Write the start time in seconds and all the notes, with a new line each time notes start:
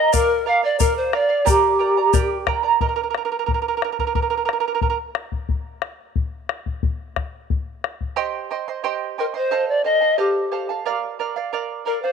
Already playing: A#4 D#5 A#5
0.12 A#4 D5 F5, bombo low, shaker
0.46 A#4 D5 F5
0.63 D5 F5
0.79 A#4 D5 F5, bombo low, shaker
0.97 C5
1.13 A#4 D5 F5, bombo rim
1.29 D5 F5
1.45 G4 A#4 D5 G5 A#5, bombo low, shaker
1.79 A#4 D5 G5 A#5
1.97 A#4 D5 A#5
2.13 G4 A#4 D5 G5 A#5, bombo low, shaker
2.47 A#4 D5 G5 A#5, bombo rim, bombo low
2.63 A#4 D5 A#5
2.81 A#4 D#5, bombo low
2.89 A#4
2.96 A#4
3.03 A#4
3.10 A#4
3.15 A#4, bombo rim
3.25 A#4
3.32 A#4
3.39 A#4
3.46 A#4, bombo low
3.54 A#4
3.62 A#4
3.68 A#4
3.77 A#4
3.82 A#4, bombo rim
3.92 A#4
3.99 A#4, bombo low
4.07 A#4
4.15 A#4, bombo low
4.22 A#4
4.30 A#4
4.37 A#4
4.45 A#4, bombo rim
4.53 A#4
4.60 A#4
4.68 A#4
4.75 A#4
4.81 A#4, bombo low
4.90 A#4
5.15 bombo rim
5.32 bombo low
5.49 bombo low
5.82 bombo rim
6.16 bombo low
6.49 bombo rim
6.66 bombo low
6.83 bombo low
7.16 bombo rim, bombo low
7.50 bombo low
7.84 bombo rim
8.01 bombo low
8.16 G4 C5 D#5 G5 C6
8.51 C5 D#5 G5 C6
8.68 C5 D#5 C6
8.84 G4 C5 D#5 G5 C6
9.18 A#4 C5 D#5 G5 C6
9.34 C5 D#5 C6
9.51 A4 C5 D#5 F5 A5
9.69 D5
9.84 A4 C5 D#5 F5 A5
10.01 A4 F5 A5
10.18 G4 A4 C5 D#5 F5 A5
10.52 A4 C5 F5 A5
10.69 A4 F5 A5
10.86 A#4 D5 F5
11.19 A#4 D5 F5
11.36 D5 F5
11.53 A#4 D5 F5
11.86 A#4 D5 F5
12.02 C5 D5 F5